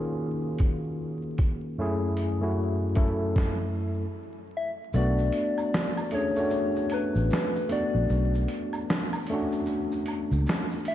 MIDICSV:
0, 0, Header, 1, 5, 480
1, 0, Start_track
1, 0, Tempo, 789474
1, 1082, Time_signature, 4, 2, 24, 8
1, 6656, End_track
2, 0, Start_track
2, 0, Title_t, "Soft synth lead"
2, 0, Program_c, 0, 80
2, 2777, Note_on_c, 0, 76, 99
2, 2862, Note_off_c, 0, 76, 0
2, 3014, Note_on_c, 0, 74, 123
2, 3736, Note_on_c, 0, 73, 106
2, 3745, Note_off_c, 0, 74, 0
2, 4218, Note_on_c, 0, 71, 99
2, 4227, Note_off_c, 0, 73, 0
2, 4690, Note_off_c, 0, 71, 0
2, 4696, Note_on_c, 0, 74, 98
2, 5145, Note_off_c, 0, 74, 0
2, 6616, Note_on_c, 0, 76, 110
2, 6656, Note_off_c, 0, 76, 0
2, 6656, End_track
3, 0, Start_track
3, 0, Title_t, "Tine electric piano"
3, 0, Program_c, 1, 4
3, 0, Control_c, 1, 64, 127
3, 0, Note_on_c, 1, 51, 74
3, 0, Note_on_c, 1, 58, 74
3, 0, Note_on_c, 1, 61, 74
3, 0, Note_on_c, 1, 65, 75
3, 0, Note_on_c, 1, 66, 70
3, 0, Note_on_c, 1, 68, 88
3, 532, Note_off_c, 1, 51, 0
3, 535, Note_off_c, 1, 58, 0
3, 537, Note_off_c, 1, 61, 0
3, 540, Note_off_c, 1, 65, 0
3, 542, Note_off_c, 1, 68, 0
3, 1083, Note_on_c, 1, 42, 86
3, 1089, Note_on_c, 1, 57, 90
3, 1090, Control_c, 1, 64, 0
3, 1093, Note_off_c, 1, 66, 0
3, 1094, Note_on_c, 1, 61, 86
3, 1099, Note_on_c, 1, 64, 88
3, 1104, Note_on_c, 1, 68, 97
3, 1191, Control_c, 1, 64, 127
3, 1320, Note_off_c, 1, 42, 0
3, 1323, Note_off_c, 1, 57, 0
3, 1325, Note_off_c, 1, 61, 0
3, 1328, Note_off_c, 1, 64, 0
3, 1330, Note_off_c, 1, 68, 0
3, 1463, Note_on_c, 1, 42, 68
3, 1469, Note_on_c, 1, 57, 65
3, 1473, Note_on_c, 1, 61, 62
3, 1478, Note_on_c, 1, 64, 70
3, 1483, Note_on_c, 1, 66, 85
3, 1702, Note_off_c, 1, 42, 0
3, 1704, Note_off_c, 1, 57, 0
3, 1707, Note_off_c, 1, 61, 0
3, 1709, Note_off_c, 1, 64, 0
3, 1712, Note_off_c, 1, 66, 0
3, 1794, Note_on_c, 1, 42, 74
3, 1800, Note_on_c, 1, 57, 80
3, 1805, Note_on_c, 1, 61, 68
3, 1809, Note_on_c, 1, 64, 73
3, 1814, Note_on_c, 1, 69, 88
3, 2051, Control_c, 1, 64, 0
3, 2449, Note_off_c, 1, 42, 0
3, 2452, Note_off_c, 1, 57, 0
3, 2454, Note_off_c, 1, 61, 0
3, 2456, Note_off_c, 1, 64, 0
3, 2459, Note_off_c, 1, 69, 0
3, 3002, Note_on_c, 1, 57, 82
3, 3009, Note_on_c, 1, 59, 78
3, 3016, Note_on_c, 1, 62, 72
3, 3023, Note_on_c, 1, 66, 96
3, 3101, Control_c, 1, 64, 127
3, 3476, Note_off_c, 1, 57, 0
3, 3480, Note_off_c, 1, 59, 0
3, 3483, Note_off_c, 1, 62, 0
3, 3487, Note_off_c, 1, 66, 0
3, 3718, Note_on_c, 1, 57, 72
3, 3725, Note_on_c, 1, 61, 67
3, 3732, Note_on_c, 1, 62, 67
3, 3739, Note_on_c, 1, 68, 77
3, 3817, Note_off_c, 1, 57, 0
3, 3821, Note_off_c, 1, 61, 0
3, 3824, Note_off_c, 1, 62, 0
3, 3828, Note_off_c, 1, 68, 0
3, 3870, Note_on_c, 1, 57, 78
3, 3878, Note_on_c, 1, 61, 64
3, 3884, Note_on_c, 1, 62, 66
3, 3890, Note_on_c, 1, 66, 88
3, 4404, Note_off_c, 1, 57, 0
3, 4408, Note_off_c, 1, 61, 0
3, 4411, Note_off_c, 1, 62, 0
3, 4415, Note_off_c, 1, 66, 0
3, 4673, Note_on_c, 1, 57, 58
3, 4680, Note_on_c, 1, 59, 69
3, 4686, Note_on_c, 1, 62, 54
3, 4693, Note_on_c, 1, 66, 75
3, 5328, Note_off_c, 1, 57, 0
3, 5331, Note_off_c, 1, 59, 0
3, 5335, Note_off_c, 1, 62, 0
3, 5338, Note_off_c, 1, 66, 0
3, 5653, Note_on_c, 1, 57, 81
3, 5660, Note_on_c, 1, 61, 83
3, 5666, Note_on_c, 1, 62, 82
3, 5674, Note_on_c, 1, 66, 96
3, 6298, Note_off_c, 1, 57, 0
3, 6301, Note_off_c, 1, 61, 0
3, 6305, Note_off_c, 1, 62, 0
3, 6308, Note_off_c, 1, 66, 0
3, 6656, End_track
4, 0, Start_track
4, 0, Title_t, "Fingered electric bass"
4, 0, Program_c, 2, 33
4, 3004, Note_on_c, 2, 35, 109
4, 3217, Note_off_c, 2, 35, 0
4, 4351, Note_on_c, 2, 33, 88
4, 4433, Note_off_c, 2, 33, 0
4, 4831, Note_on_c, 2, 34, 84
4, 4913, Note_off_c, 2, 34, 0
4, 4924, Note_on_c, 2, 35, 115
4, 5138, Note_off_c, 2, 35, 0
4, 6271, Note_on_c, 2, 37, 91
4, 6353, Note_off_c, 2, 37, 0
4, 6656, End_track
5, 0, Start_track
5, 0, Title_t, "Drums"
5, 356, Note_on_c, 9, 42, 56
5, 364, Note_on_c, 9, 36, 80
5, 416, Note_off_c, 9, 42, 0
5, 425, Note_off_c, 9, 36, 0
5, 840, Note_on_c, 9, 42, 61
5, 844, Note_on_c, 9, 36, 95
5, 900, Note_off_c, 9, 42, 0
5, 905, Note_off_c, 9, 36, 0
5, 1318, Note_on_c, 9, 42, 62
5, 1379, Note_off_c, 9, 42, 0
5, 1796, Note_on_c, 9, 42, 54
5, 1804, Note_on_c, 9, 36, 83
5, 1856, Note_off_c, 9, 42, 0
5, 1865, Note_off_c, 9, 36, 0
5, 2043, Note_on_c, 9, 36, 98
5, 2055, Note_on_c, 9, 38, 87
5, 2104, Note_off_c, 9, 36, 0
5, 2115, Note_off_c, 9, 38, 0
5, 2999, Note_on_c, 9, 82, 66
5, 3005, Note_off_c, 9, 82, 0
5, 3005, Note_on_c, 9, 82, 67
5, 3065, Note_off_c, 9, 82, 0
5, 3153, Note_on_c, 9, 82, 44
5, 3214, Note_off_c, 9, 82, 0
5, 3237, Note_on_c, 9, 42, 68
5, 3237, Note_on_c, 9, 82, 49
5, 3243, Note_off_c, 9, 82, 0
5, 3243, Note_on_c, 9, 82, 51
5, 3298, Note_off_c, 9, 42, 0
5, 3303, Note_off_c, 9, 82, 0
5, 3392, Note_on_c, 9, 76, 60
5, 3393, Note_on_c, 9, 82, 40
5, 3452, Note_off_c, 9, 76, 0
5, 3453, Note_off_c, 9, 82, 0
5, 3486, Note_on_c, 9, 82, 63
5, 3489, Note_off_c, 9, 82, 0
5, 3489, Note_on_c, 9, 82, 58
5, 3492, Note_on_c, 9, 38, 122
5, 3550, Note_off_c, 9, 82, 0
5, 3553, Note_off_c, 9, 38, 0
5, 3632, Note_on_c, 9, 82, 45
5, 3633, Note_on_c, 9, 76, 75
5, 3693, Note_off_c, 9, 76, 0
5, 3693, Note_off_c, 9, 82, 0
5, 3714, Note_on_c, 9, 42, 61
5, 3714, Note_on_c, 9, 82, 44
5, 3719, Note_off_c, 9, 82, 0
5, 3719, Note_on_c, 9, 82, 61
5, 3775, Note_off_c, 9, 42, 0
5, 3779, Note_off_c, 9, 82, 0
5, 3866, Note_on_c, 9, 82, 50
5, 3927, Note_off_c, 9, 82, 0
5, 3952, Note_on_c, 9, 82, 72
5, 3953, Note_off_c, 9, 82, 0
5, 3953, Note_on_c, 9, 82, 54
5, 4013, Note_off_c, 9, 82, 0
5, 4108, Note_on_c, 9, 82, 52
5, 4169, Note_off_c, 9, 82, 0
5, 4193, Note_on_c, 9, 42, 64
5, 4193, Note_on_c, 9, 82, 42
5, 4206, Note_off_c, 9, 82, 0
5, 4206, Note_on_c, 9, 76, 54
5, 4206, Note_on_c, 9, 82, 40
5, 4254, Note_off_c, 9, 42, 0
5, 4266, Note_off_c, 9, 76, 0
5, 4266, Note_off_c, 9, 82, 0
5, 4350, Note_on_c, 9, 82, 42
5, 4411, Note_off_c, 9, 82, 0
5, 4437, Note_on_c, 9, 82, 68
5, 4442, Note_off_c, 9, 82, 0
5, 4442, Note_on_c, 9, 82, 68
5, 4459, Note_on_c, 9, 38, 112
5, 4502, Note_off_c, 9, 82, 0
5, 4520, Note_off_c, 9, 38, 0
5, 4594, Note_on_c, 9, 82, 52
5, 4654, Note_off_c, 9, 82, 0
5, 4678, Note_on_c, 9, 42, 69
5, 4678, Note_on_c, 9, 82, 51
5, 4739, Note_off_c, 9, 42, 0
5, 4739, Note_off_c, 9, 82, 0
5, 4919, Note_on_c, 9, 82, 66
5, 4923, Note_off_c, 9, 82, 0
5, 4923, Note_on_c, 9, 82, 70
5, 4984, Note_off_c, 9, 82, 0
5, 5073, Note_on_c, 9, 82, 48
5, 5134, Note_off_c, 9, 82, 0
5, 5158, Note_on_c, 9, 42, 66
5, 5158, Note_on_c, 9, 82, 51
5, 5160, Note_off_c, 9, 82, 0
5, 5160, Note_on_c, 9, 82, 50
5, 5218, Note_off_c, 9, 42, 0
5, 5221, Note_off_c, 9, 82, 0
5, 5308, Note_on_c, 9, 76, 62
5, 5311, Note_on_c, 9, 82, 43
5, 5368, Note_off_c, 9, 76, 0
5, 5372, Note_off_c, 9, 82, 0
5, 5404, Note_on_c, 9, 82, 61
5, 5409, Note_off_c, 9, 82, 0
5, 5409, Note_on_c, 9, 82, 59
5, 5412, Note_on_c, 9, 38, 109
5, 5470, Note_off_c, 9, 82, 0
5, 5473, Note_off_c, 9, 38, 0
5, 5551, Note_on_c, 9, 76, 76
5, 5553, Note_on_c, 9, 82, 48
5, 5612, Note_off_c, 9, 76, 0
5, 5613, Note_off_c, 9, 82, 0
5, 5634, Note_on_c, 9, 42, 61
5, 5634, Note_on_c, 9, 82, 43
5, 5638, Note_off_c, 9, 82, 0
5, 5638, Note_on_c, 9, 82, 59
5, 5695, Note_off_c, 9, 42, 0
5, 5699, Note_off_c, 9, 82, 0
5, 5787, Note_on_c, 9, 82, 47
5, 5848, Note_off_c, 9, 82, 0
5, 5873, Note_on_c, 9, 82, 78
5, 5875, Note_off_c, 9, 82, 0
5, 5875, Note_on_c, 9, 82, 60
5, 5935, Note_off_c, 9, 82, 0
5, 6029, Note_on_c, 9, 82, 52
5, 6090, Note_off_c, 9, 82, 0
5, 6114, Note_on_c, 9, 42, 63
5, 6114, Note_on_c, 9, 82, 45
5, 6129, Note_off_c, 9, 82, 0
5, 6129, Note_on_c, 9, 76, 57
5, 6129, Note_on_c, 9, 82, 41
5, 6175, Note_off_c, 9, 42, 0
5, 6189, Note_off_c, 9, 76, 0
5, 6189, Note_off_c, 9, 82, 0
5, 6272, Note_on_c, 9, 82, 41
5, 6333, Note_off_c, 9, 82, 0
5, 6360, Note_on_c, 9, 82, 76
5, 6362, Note_off_c, 9, 82, 0
5, 6362, Note_on_c, 9, 82, 68
5, 6380, Note_on_c, 9, 38, 117
5, 6423, Note_off_c, 9, 82, 0
5, 6440, Note_off_c, 9, 38, 0
5, 6514, Note_on_c, 9, 82, 54
5, 6574, Note_off_c, 9, 82, 0
5, 6598, Note_on_c, 9, 42, 71
5, 6598, Note_on_c, 9, 82, 47
5, 6600, Note_off_c, 9, 82, 0
5, 6600, Note_on_c, 9, 82, 45
5, 6656, Note_off_c, 9, 42, 0
5, 6656, Note_off_c, 9, 82, 0
5, 6656, End_track
0, 0, End_of_file